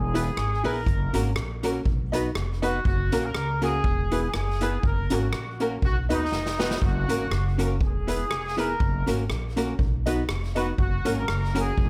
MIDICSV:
0, 0, Header, 1, 7, 480
1, 0, Start_track
1, 0, Tempo, 495868
1, 841, Time_signature, 4, 2, 24, 8
1, 11514, End_track
2, 0, Start_track
2, 0, Title_t, "Horn section"
2, 0, Program_c, 0, 61
2, 0, Note_on_c, 0, 68, 90
2, 593, Note_off_c, 0, 68, 0
2, 631, Note_on_c, 0, 70, 112
2, 1109, Note_off_c, 0, 70, 0
2, 2553, Note_on_c, 0, 66, 95
2, 2750, Note_off_c, 0, 66, 0
2, 2769, Note_on_c, 0, 66, 101
2, 3113, Note_off_c, 0, 66, 0
2, 3138, Note_on_c, 0, 70, 110
2, 3510, Note_off_c, 0, 70, 0
2, 3512, Note_on_c, 0, 68, 105
2, 4166, Note_off_c, 0, 68, 0
2, 4211, Note_on_c, 0, 68, 83
2, 4653, Note_off_c, 0, 68, 0
2, 4699, Note_on_c, 0, 70, 97
2, 4957, Note_off_c, 0, 70, 0
2, 4963, Note_on_c, 0, 66, 81
2, 5436, Note_off_c, 0, 66, 0
2, 5653, Note_on_c, 0, 66, 101
2, 5770, Note_off_c, 0, 66, 0
2, 5916, Note_on_c, 0, 63, 106
2, 6358, Note_off_c, 0, 63, 0
2, 6391, Note_on_c, 0, 63, 91
2, 6588, Note_off_c, 0, 63, 0
2, 6602, Note_on_c, 0, 66, 110
2, 7347, Note_off_c, 0, 66, 0
2, 7577, Note_on_c, 0, 68, 96
2, 8275, Note_off_c, 0, 68, 0
2, 8311, Note_on_c, 0, 70, 118
2, 8788, Note_off_c, 0, 70, 0
2, 10227, Note_on_c, 0, 66, 85
2, 10323, Note_off_c, 0, 66, 0
2, 10443, Note_on_c, 0, 66, 99
2, 10788, Note_off_c, 0, 66, 0
2, 10826, Note_on_c, 0, 70, 106
2, 11192, Note_off_c, 0, 70, 0
2, 11202, Note_on_c, 0, 68, 95
2, 11514, Note_off_c, 0, 68, 0
2, 11514, End_track
3, 0, Start_track
3, 0, Title_t, "Upright piano"
3, 0, Program_c, 1, 0
3, 135, Note_on_c, 1, 64, 86
3, 142, Note_on_c, 1, 68, 84
3, 147, Note_on_c, 1, 71, 99
3, 241, Note_off_c, 1, 64, 0
3, 245, Note_off_c, 1, 68, 0
3, 247, Note_off_c, 1, 71, 0
3, 614, Note_on_c, 1, 64, 85
3, 617, Note_on_c, 1, 68, 77
3, 624, Note_on_c, 1, 71, 94
3, 720, Note_off_c, 1, 64, 0
3, 722, Note_off_c, 1, 68, 0
3, 726, Note_off_c, 1, 71, 0
3, 1094, Note_on_c, 1, 61, 91
3, 1103, Note_on_c, 1, 66, 84
3, 1107, Note_on_c, 1, 70, 109
3, 1201, Note_off_c, 1, 61, 0
3, 1205, Note_off_c, 1, 66, 0
3, 1207, Note_off_c, 1, 70, 0
3, 1577, Note_on_c, 1, 61, 93
3, 1579, Note_on_c, 1, 66, 83
3, 1587, Note_on_c, 1, 70, 95
3, 1683, Note_off_c, 1, 61, 0
3, 1684, Note_off_c, 1, 66, 0
3, 1688, Note_off_c, 1, 70, 0
3, 2053, Note_on_c, 1, 63, 99
3, 2060, Note_on_c, 1, 66, 75
3, 2065, Note_on_c, 1, 71, 105
3, 2161, Note_off_c, 1, 63, 0
3, 2164, Note_off_c, 1, 66, 0
3, 2167, Note_off_c, 1, 71, 0
3, 2537, Note_on_c, 1, 63, 84
3, 2542, Note_on_c, 1, 66, 86
3, 2549, Note_on_c, 1, 71, 89
3, 2643, Note_off_c, 1, 63, 0
3, 2645, Note_off_c, 1, 66, 0
3, 2649, Note_off_c, 1, 71, 0
3, 3018, Note_on_c, 1, 61, 92
3, 3023, Note_on_c, 1, 66, 82
3, 3030, Note_on_c, 1, 70, 110
3, 3124, Note_off_c, 1, 61, 0
3, 3126, Note_off_c, 1, 66, 0
3, 3129, Note_off_c, 1, 70, 0
3, 3499, Note_on_c, 1, 61, 90
3, 3506, Note_on_c, 1, 66, 86
3, 3512, Note_on_c, 1, 70, 113
3, 3604, Note_off_c, 1, 61, 0
3, 3607, Note_off_c, 1, 66, 0
3, 3610, Note_off_c, 1, 70, 0
3, 3982, Note_on_c, 1, 64, 84
3, 3988, Note_on_c, 1, 68, 81
3, 3994, Note_on_c, 1, 71, 93
3, 4085, Note_off_c, 1, 64, 0
3, 4088, Note_off_c, 1, 68, 0
3, 4091, Note_off_c, 1, 71, 0
3, 4461, Note_on_c, 1, 64, 94
3, 4466, Note_on_c, 1, 68, 86
3, 4472, Note_on_c, 1, 71, 91
3, 4565, Note_off_c, 1, 64, 0
3, 4567, Note_off_c, 1, 68, 0
3, 4571, Note_off_c, 1, 71, 0
3, 4937, Note_on_c, 1, 61, 105
3, 4942, Note_on_c, 1, 66, 88
3, 4948, Note_on_c, 1, 70, 105
3, 5043, Note_off_c, 1, 61, 0
3, 5045, Note_off_c, 1, 66, 0
3, 5049, Note_off_c, 1, 70, 0
3, 5420, Note_on_c, 1, 61, 82
3, 5424, Note_on_c, 1, 66, 88
3, 5431, Note_on_c, 1, 70, 97
3, 5524, Note_off_c, 1, 61, 0
3, 5526, Note_off_c, 1, 66, 0
3, 5530, Note_off_c, 1, 70, 0
3, 5895, Note_on_c, 1, 63, 95
3, 5901, Note_on_c, 1, 66, 75
3, 5906, Note_on_c, 1, 71, 100
3, 6002, Note_off_c, 1, 63, 0
3, 6005, Note_off_c, 1, 66, 0
3, 6007, Note_off_c, 1, 71, 0
3, 6373, Note_on_c, 1, 63, 76
3, 6377, Note_on_c, 1, 66, 83
3, 6383, Note_on_c, 1, 71, 97
3, 6481, Note_off_c, 1, 63, 0
3, 6483, Note_off_c, 1, 66, 0
3, 6486, Note_off_c, 1, 71, 0
3, 6854, Note_on_c, 1, 61, 91
3, 6859, Note_on_c, 1, 66, 95
3, 6865, Note_on_c, 1, 70, 99
3, 6961, Note_off_c, 1, 61, 0
3, 6963, Note_off_c, 1, 66, 0
3, 6966, Note_off_c, 1, 70, 0
3, 7335, Note_on_c, 1, 61, 99
3, 7340, Note_on_c, 1, 66, 93
3, 7345, Note_on_c, 1, 70, 104
3, 7441, Note_off_c, 1, 61, 0
3, 7444, Note_off_c, 1, 66, 0
3, 7446, Note_off_c, 1, 70, 0
3, 7813, Note_on_c, 1, 64, 94
3, 7821, Note_on_c, 1, 68, 82
3, 7825, Note_on_c, 1, 71, 95
3, 7920, Note_off_c, 1, 64, 0
3, 7924, Note_off_c, 1, 68, 0
3, 7926, Note_off_c, 1, 71, 0
3, 8292, Note_on_c, 1, 64, 88
3, 8300, Note_on_c, 1, 68, 85
3, 8304, Note_on_c, 1, 71, 94
3, 8399, Note_off_c, 1, 64, 0
3, 8403, Note_off_c, 1, 68, 0
3, 8405, Note_off_c, 1, 71, 0
3, 8772, Note_on_c, 1, 61, 96
3, 8778, Note_on_c, 1, 66, 88
3, 8784, Note_on_c, 1, 70, 110
3, 8879, Note_off_c, 1, 61, 0
3, 8882, Note_off_c, 1, 66, 0
3, 8885, Note_off_c, 1, 70, 0
3, 9256, Note_on_c, 1, 61, 91
3, 9259, Note_on_c, 1, 66, 85
3, 9269, Note_on_c, 1, 70, 108
3, 9361, Note_off_c, 1, 61, 0
3, 9362, Note_off_c, 1, 66, 0
3, 9367, Note_off_c, 1, 70, 0
3, 9736, Note_on_c, 1, 63, 91
3, 9742, Note_on_c, 1, 66, 91
3, 9745, Note_on_c, 1, 71, 95
3, 9841, Note_off_c, 1, 63, 0
3, 9844, Note_off_c, 1, 66, 0
3, 9846, Note_off_c, 1, 71, 0
3, 10214, Note_on_c, 1, 63, 87
3, 10219, Note_on_c, 1, 66, 76
3, 10223, Note_on_c, 1, 71, 94
3, 10320, Note_off_c, 1, 63, 0
3, 10322, Note_off_c, 1, 66, 0
3, 10324, Note_off_c, 1, 71, 0
3, 10695, Note_on_c, 1, 61, 95
3, 10702, Note_on_c, 1, 66, 97
3, 10708, Note_on_c, 1, 70, 106
3, 10800, Note_off_c, 1, 61, 0
3, 10803, Note_off_c, 1, 66, 0
3, 10807, Note_off_c, 1, 70, 0
3, 11175, Note_on_c, 1, 61, 98
3, 11182, Note_on_c, 1, 66, 83
3, 11187, Note_on_c, 1, 70, 101
3, 11280, Note_off_c, 1, 61, 0
3, 11283, Note_off_c, 1, 66, 0
3, 11286, Note_off_c, 1, 70, 0
3, 11514, End_track
4, 0, Start_track
4, 0, Title_t, "Hollow-body jazz guitar"
4, 0, Program_c, 2, 26
4, 143, Note_on_c, 2, 59, 73
4, 147, Note_on_c, 2, 64, 76
4, 153, Note_on_c, 2, 68, 78
4, 156, Note_on_c, 2, 71, 84
4, 293, Note_off_c, 2, 59, 0
4, 294, Note_off_c, 2, 64, 0
4, 297, Note_off_c, 2, 68, 0
4, 299, Note_off_c, 2, 71, 0
4, 623, Note_on_c, 2, 59, 85
4, 627, Note_on_c, 2, 64, 94
4, 634, Note_on_c, 2, 68, 90
4, 634, Note_on_c, 2, 71, 106
4, 773, Note_off_c, 2, 59, 0
4, 775, Note_off_c, 2, 64, 0
4, 778, Note_off_c, 2, 68, 0
4, 778, Note_off_c, 2, 71, 0
4, 1103, Note_on_c, 2, 58, 75
4, 1106, Note_on_c, 2, 61, 80
4, 1114, Note_on_c, 2, 66, 90
4, 1115, Note_on_c, 2, 70, 85
4, 1253, Note_off_c, 2, 58, 0
4, 1254, Note_off_c, 2, 61, 0
4, 1258, Note_off_c, 2, 66, 0
4, 1259, Note_off_c, 2, 70, 0
4, 1586, Note_on_c, 2, 58, 68
4, 1590, Note_on_c, 2, 61, 82
4, 1592, Note_on_c, 2, 66, 70
4, 1597, Note_on_c, 2, 70, 83
4, 1734, Note_off_c, 2, 58, 0
4, 1737, Note_off_c, 2, 61, 0
4, 1738, Note_off_c, 2, 66, 0
4, 1740, Note_off_c, 2, 70, 0
4, 2064, Note_on_c, 2, 59, 84
4, 2068, Note_on_c, 2, 63, 84
4, 2074, Note_on_c, 2, 66, 90
4, 2079, Note_on_c, 2, 71, 91
4, 2214, Note_off_c, 2, 59, 0
4, 2216, Note_off_c, 2, 63, 0
4, 2219, Note_off_c, 2, 66, 0
4, 2221, Note_off_c, 2, 71, 0
4, 2539, Note_on_c, 2, 59, 82
4, 2541, Note_on_c, 2, 63, 97
4, 2548, Note_on_c, 2, 66, 96
4, 2549, Note_on_c, 2, 71, 96
4, 2692, Note_off_c, 2, 59, 0
4, 2693, Note_off_c, 2, 63, 0
4, 2696, Note_off_c, 2, 66, 0
4, 2697, Note_off_c, 2, 71, 0
4, 3024, Note_on_c, 2, 58, 100
4, 3026, Note_on_c, 2, 61, 91
4, 3033, Note_on_c, 2, 66, 78
4, 3036, Note_on_c, 2, 70, 82
4, 3174, Note_off_c, 2, 58, 0
4, 3175, Note_off_c, 2, 61, 0
4, 3179, Note_off_c, 2, 66, 0
4, 3180, Note_off_c, 2, 70, 0
4, 3503, Note_on_c, 2, 58, 86
4, 3508, Note_on_c, 2, 61, 74
4, 3514, Note_on_c, 2, 66, 85
4, 3516, Note_on_c, 2, 70, 86
4, 3654, Note_off_c, 2, 58, 0
4, 3656, Note_off_c, 2, 61, 0
4, 3659, Note_off_c, 2, 66, 0
4, 3660, Note_off_c, 2, 70, 0
4, 3986, Note_on_c, 2, 59, 78
4, 3988, Note_on_c, 2, 64, 79
4, 3992, Note_on_c, 2, 68, 84
4, 3998, Note_on_c, 2, 71, 88
4, 4135, Note_off_c, 2, 59, 0
4, 4136, Note_off_c, 2, 64, 0
4, 4138, Note_off_c, 2, 68, 0
4, 4141, Note_off_c, 2, 71, 0
4, 4470, Note_on_c, 2, 59, 87
4, 4474, Note_on_c, 2, 64, 80
4, 4480, Note_on_c, 2, 68, 86
4, 4482, Note_on_c, 2, 71, 100
4, 4617, Note_off_c, 2, 59, 0
4, 4619, Note_off_c, 2, 64, 0
4, 4622, Note_off_c, 2, 68, 0
4, 4623, Note_off_c, 2, 71, 0
4, 4944, Note_on_c, 2, 58, 82
4, 4951, Note_on_c, 2, 61, 85
4, 4955, Note_on_c, 2, 66, 94
4, 4958, Note_on_c, 2, 70, 94
4, 5094, Note_off_c, 2, 58, 0
4, 5098, Note_off_c, 2, 61, 0
4, 5100, Note_off_c, 2, 66, 0
4, 5101, Note_off_c, 2, 70, 0
4, 5427, Note_on_c, 2, 58, 82
4, 5435, Note_on_c, 2, 61, 82
4, 5439, Note_on_c, 2, 66, 83
4, 5440, Note_on_c, 2, 70, 89
4, 5576, Note_off_c, 2, 58, 0
4, 5579, Note_off_c, 2, 61, 0
4, 5581, Note_off_c, 2, 66, 0
4, 5582, Note_off_c, 2, 70, 0
4, 5904, Note_on_c, 2, 59, 77
4, 5908, Note_on_c, 2, 63, 85
4, 5912, Note_on_c, 2, 66, 85
4, 5918, Note_on_c, 2, 71, 89
4, 6054, Note_off_c, 2, 59, 0
4, 6056, Note_off_c, 2, 63, 0
4, 6058, Note_off_c, 2, 66, 0
4, 6061, Note_off_c, 2, 71, 0
4, 6383, Note_on_c, 2, 59, 88
4, 6384, Note_on_c, 2, 63, 94
4, 6390, Note_on_c, 2, 66, 95
4, 6393, Note_on_c, 2, 71, 101
4, 6533, Note_off_c, 2, 59, 0
4, 6534, Note_off_c, 2, 63, 0
4, 6536, Note_off_c, 2, 66, 0
4, 6538, Note_off_c, 2, 71, 0
4, 6862, Note_on_c, 2, 58, 85
4, 6869, Note_on_c, 2, 61, 85
4, 6871, Note_on_c, 2, 66, 89
4, 6875, Note_on_c, 2, 70, 88
4, 7012, Note_off_c, 2, 58, 0
4, 7016, Note_off_c, 2, 61, 0
4, 7017, Note_off_c, 2, 66, 0
4, 7019, Note_off_c, 2, 70, 0
4, 7344, Note_on_c, 2, 58, 69
4, 7350, Note_on_c, 2, 61, 74
4, 7352, Note_on_c, 2, 66, 78
4, 7356, Note_on_c, 2, 70, 82
4, 7493, Note_off_c, 2, 58, 0
4, 7496, Note_off_c, 2, 61, 0
4, 7497, Note_off_c, 2, 66, 0
4, 7499, Note_off_c, 2, 70, 0
4, 7820, Note_on_c, 2, 59, 69
4, 7824, Note_on_c, 2, 64, 75
4, 7827, Note_on_c, 2, 68, 66
4, 7832, Note_on_c, 2, 71, 82
4, 7971, Note_off_c, 2, 59, 0
4, 7973, Note_off_c, 2, 64, 0
4, 7975, Note_off_c, 2, 68, 0
4, 7977, Note_off_c, 2, 71, 0
4, 8301, Note_on_c, 2, 59, 80
4, 8306, Note_on_c, 2, 64, 88
4, 8309, Note_on_c, 2, 68, 91
4, 8314, Note_on_c, 2, 71, 100
4, 8452, Note_off_c, 2, 59, 0
4, 8454, Note_off_c, 2, 64, 0
4, 8455, Note_off_c, 2, 68, 0
4, 8458, Note_off_c, 2, 71, 0
4, 8787, Note_on_c, 2, 58, 83
4, 8790, Note_on_c, 2, 61, 82
4, 8797, Note_on_c, 2, 66, 97
4, 8799, Note_on_c, 2, 70, 92
4, 8934, Note_off_c, 2, 58, 0
4, 8936, Note_off_c, 2, 61, 0
4, 8939, Note_off_c, 2, 66, 0
4, 8940, Note_off_c, 2, 70, 0
4, 9263, Note_on_c, 2, 58, 86
4, 9268, Note_on_c, 2, 61, 76
4, 9272, Note_on_c, 2, 66, 88
4, 9275, Note_on_c, 2, 70, 88
4, 9412, Note_off_c, 2, 58, 0
4, 9414, Note_off_c, 2, 61, 0
4, 9417, Note_off_c, 2, 66, 0
4, 9418, Note_off_c, 2, 70, 0
4, 9746, Note_on_c, 2, 59, 82
4, 9751, Note_on_c, 2, 63, 84
4, 9755, Note_on_c, 2, 66, 82
4, 9757, Note_on_c, 2, 71, 95
4, 9893, Note_off_c, 2, 59, 0
4, 9896, Note_off_c, 2, 63, 0
4, 9898, Note_off_c, 2, 66, 0
4, 9899, Note_off_c, 2, 71, 0
4, 10220, Note_on_c, 2, 59, 81
4, 10223, Note_on_c, 2, 63, 77
4, 10228, Note_on_c, 2, 66, 92
4, 10232, Note_on_c, 2, 71, 89
4, 10370, Note_off_c, 2, 59, 0
4, 10372, Note_off_c, 2, 63, 0
4, 10374, Note_off_c, 2, 66, 0
4, 10376, Note_off_c, 2, 71, 0
4, 10698, Note_on_c, 2, 58, 85
4, 10701, Note_on_c, 2, 61, 100
4, 10707, Note_on_c, 2, 66, 95
4, 10709, Note_on_c, 2, 70, 98
4, 10849, Note_off_c, 2, 58, 0
4, 10850, Note_off_c, 2, 61, 0
4, 10853, Note_off_c, 2, 66, 0
4, 10855, Note_off_c, 2, 70, 0
4, 11179, Note_on_c, 2, 58, 78
4, 11183, Note_on_c, 2, 61, 75
4, 11186, Note_on_c, 2, 66, 82
4, 11191, Note_on_c, 2, 70, 88
4, 11330, Note_off_c, 2, 58, 0
4, 11332, Note_off_c, 2, 61, 0
4, 11333, Note_off_c, 2, 66, 0
4, 11335, Note_off_c, 2, 70, 0
4, 11514, End_track
5, 0, Start_track
5, 0, Title_t, "Upright bass"
5, 0, Program_c, 3, 32
5, 0, Note_on_c, 3, 28, 114
5, 285, Note_off_c, 3, 28, 0
5, 357, Note_on_c, 3, 32, 84
5, 585, Note_off_c, 3, 32, 0
5, 625, Note_on_c, 3, 34, 82
5, 808, Note_off_c, 3, 34, 0
5, 837, Note_on_c, 3, 30, 105
5, 1065, Note_off_c, 3, 30, 0
5, 1102, Note_on_c, 3, 32, 96
5, 1286, Note_off_c, 3, 32, 0
5, 1317, Note_on_c, 3, 34, 90
5, 1727, Note_off_c, 3, 34, 0
5, 1797, Note_on_c, 3, 35, 98
5, 2207, Note_off_c, 3, 35, 0
5, 2279, Note_on_c, 3, 29, 81
5, 2688, Note_off_c, 3, 29, 0
5, 2762, Note_on_c, 3, 30, 110
5, 2988, Note_off_c, 3, 30, 0
5, 3029, Note_on_c, 3, 34, 99
5, 3211, Note_off_c, 3, 34, 0
5, 3244, Note_on_c, 3, 37, 86
5, 3652, Note_off_c, 3, 37, 0
5, 3720, Note_on_c, 3, 28, 107
5, 4129, Note_off_c, 3, 28, 0
5, 4201, Note_on_c, 3, 30, 85
5, 4610, Note_off_c, 3, 30, 0
5, 4680, Note_on_c, 3, 30, 105
5, 4907, Note_off_c, 3, 30, 0
5, 4952, Note_on_c, 3, 32, 97
5, 5132, Note_off_c, 3, 32, 0
5, 5161, Note_on_c, 3, 34, 99
5, 5570, Note_off_c, 3, 34, 0
5, 5637, Note_on_c, 3, 35, 104
5, 5865, Note_off_c, 3, 35, 0
5, 5909, Note_on_c, 3, 39, 86
5, 6091, Note_off_c, 3, 39, 0
5, 6119, Note_on_c, 3, 29, 77
5, 6528, Note_off_c, 3, 29, 0
5, 6601, Note_on_c, 3, 30, 112
5, 6827, Note_off_c, 3, 30, 0
5, 6867, Note_on_c, 3, 32, 91
5, 7049, Note_off_c, 3, 32, 0
5, 7074, Note_on_c, 3, 30, 100
5, 7557, Note_off_c, 3, 30, 0
5, 7557, Note_on_c, 3, 28, 105
5, 7966, Note_off_c, 3, 28, 0
5, 8039, Note_on_c, 3, 29, 73
5, 8447, Note_off_c, 3, 29, 0
5, 8521, Note_on_c, 3, 30, 110
5, 8746, Note_off_c, 3, 30, 0
5, 8788, Note_on_c, 3, 32, 92
5, 8969, Note_off_c, 3, 32, 0
5, 8996, Note_on_c, 3, 34, 91
5, 9405, Note_off_c, 3, 34, 0
5, 9477, Note_on_c, 3, 35, 99
5, 9886, Note_off_c, 3, 35, 0
5, 9961, Note_on_c, 3, 29, 91
5, 10368, Note_off_c, 3, 29, 0
5, 10438, Note_on_c, 3, 30, 103
5, 10665, Note_off_c, 3, 30, 0
5, 10714, Note_on_c, 3, 32, 104
5, 10892, Note_off_c, 3, 32, 0
5, 10926, Note_on_c, 3, 30, 87
5, 11331, Note_off_c, 3, 30, 0
5, 11399, Note_on_c, 3, 28, 114
5, 11514, Note_off_c, 3, 28, 0
5, 11514, End_track
6, 0, Start_track
6, 0, Title_t, "Muted hollow-body jazz guitar strokes"
6, 358, Note_on_c, 9, 29, 38
6, 455, Note_off_c, 9, 29, 0
6, 4205, Note_on_c, 9, 29, 42
6, 4301, Note_off_c, 9, 29, 0
6, 8039, Note_on_c, 9, 29, 32
6, 8135, Note_off_c, 9, 29, 0
6, 11514, End_track
7, 0, Start_track
7, 0, Title_t, "Drums"
7, 146, Note_on_c, 9, 42, 86
7, 243, Note_off_c, 9, 42, 0
7, 361, Note_on_c, 9, 37, 106
7, 458, Note_off_c, 9, 37, 0
7, 621, Note_on_c, 9, 46, 43
7, 718, Note_off_c, 9, 46, 0
7, 837, Note_on_c, 9, 36, 110
7, 837, Note_on_c, 9, 44, 58
7, 934, Note_off_c, 9, 36, 0
7, 934, Note_off_c, 9, 44, 0
7, 1100, Note_on_c, 9, 42, 106
7, 1197, Note_off_c, 9, 42, 0
7, 1315, Note_on_c, 9, 37, 121
7, 1412, Note_off_c, 9, 37, 0
7, 1581, Note_on_c, 9, 42, 86
7, 1677, Note_off_c, 9, 42, 0
7, 1795, Note_on_c, 9, 36, 107
7, 1892, Note_off_c, 9, 36, 0
7, 2064, Note_on_c, 9, 42, 91
7, 2161, Note_off_c, 9, 42, 0
7, 2278, Note_on_c, 9, 37, 104
7, 2375, Note_off_c, 9, 37, 0
7, 2544, Note_on_c, 9, 42, 63
7, 2641, Note_off_c, 9, 42, 0
7, 2761, Note_on_c, 9, 36, 125
7, 2857, Note_off_c, 9, 36, 0
7, 3022, Note_on_c, 9, 42, 106
7, 3119, Note_off_c, 9, 42, 0
7, 3238, Note_on_c, 9, 37, 119
7, 3335, Note_off_c, 9, 37, 0
7, 3503, Note_on_c, 9, 42, 72
7, 3599, Note_off_c, 9, 42, 0
7, 3718, Note_on_c, 9, 36, 115
7, 3815, Note_off_c, 9, 36, 0
7, 3983, Note_on_c, 9, 42, 82
7, 4080, Note_off_c, 9, 42, 0
7, 4197, Note_on_c, 9, 37, 118
7, 4294, Note_off_c, 9, 37, 0
7, 4460, Note_on_c, 9, 42, 76
7, 4557, Note_off_c, 9, 42, 0
7, 4679, Note_on_c, 9, 36, 117
7, 4776, Note_off_c, 9, 36, 0
7, 4938, Note_on_c, 9, 42, 102
7, 5035, Note_off_c, 9, 42, 0
7, 5156, Note_on_c, 9, 37, 115
7, 5252, Note_off_c, 9, 37, 0
7, 5421, Note_on_c, 9, 42, 78
7, 5518, Note_off_c, 9, 42, 0
7, 5637, Note_on_c, 9, 36, 108
7, 5734, Note_off_c, 9, 36, 0
7, 5907, Note_on_c, 9, 42, 85
7, 6004, Note_off_c, 9, 42, 0
7, 6119, Note_on_c, 9, 38, 58
7, 6215, Note_off_c, 9, 38, 0
7, 6254, Note_on_c, 9, 38, 58
7, 6351, Note_off_c, 9, 38, 0
7, 6388, Note_on_c, 9, 38, 91
7, 6485, Note_off_c, 9, 38, 0
7, 6495, Note_on_c, 9, 38, 92
7, 6592, Note_off_c, 9, 38, 0
7, 6600, Note_on_c, 9, 36, 120
7, 6696, Note_off_c, 9, 36, 0
7, 6867, Note_on_c, 9, 42, 102
7, 6964, Note_off_c, 9, 42, 0
7, 7081, Note_on_c, 9, 37, 112
7, 7178, Note_off_c, 9, 37, 0
7, 7346, Note_on_c, 9, 42, 80
7, 7443, Note_off_c, 9, 42, 0
7, 7556, Note_on_c, 9, 36, 109
7, 7653, Note_off_c, 9, 36, 0
7, 7822, Note_on_c, 9, 42, 88
7, 7919, Note_off_c, 9, 42, 0
7, 8041, Note_on_c, 9, 37, 102
7, 8138, Note_off_c, 9, 37, 0
7, 8307, Note_on_c, 9, 42, 71
7, 8404, Note_off_c, 9, 42, 0
7, 8521, Note_on_c, 9, 36, 121
7, 8617, Note_off_c, 9, 36, 0
7, 8782, Note_on_c, 9, 42, 104
7, 8879, Note_off_c, 9, 42, 0
7, 8999, Note_on_c, 9, 37, 101
7, 9095, Note_off_c, 9, 37, 0
7, 9261, Note_on_c, 9, 42, 86
7, 9358, Note_off_c, 9, 42, 0
7, 9476, Note_on_c, 9, 36, 104
7, 9573, Note_off_c, 9, 36, 0
7, 9742, Note_on_c, 9, 42, 85
7, 9838, Note_off_c, 9, 42, 0
7, 9958, Note_on_c, 9, 37, 113
7, 10055, Note_off_c, 9, 37, 0
7, 10219, Note_on_c, 9, 42, 72
7, 10316, Note_off_c, 9, 42, 0
7, 10439, Note_on_c, 9, 36, 109
7, 10536, Note_off_c, 9, 36, 0
7, 10700, Note_on_c, 9, 42, 109
7, 10796, Note_off_c, 9, 42, 0
7, 10921, Note_on_c, 9, 37, 109
7, 11017, Note_off_c, 9, 37, 0
7, 11184, Note_on_c, 9, 42, 82
7, 11281, Note_off_c, 9, 42, 0
7, 11398, Note_on_c, 9, 36, 106
7, 11495, Note_off_c, 9, 36, 0
7, 11514, End_track
0, 0, End_of_file